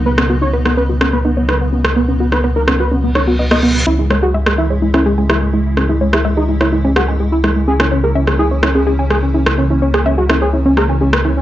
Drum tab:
SD |-r---r--r---r--r|---r--r---r--r--|--r--r---r--r---|r--r---r--r---r-|

SD |-r---r--r---r--r|---r--r---r--r--|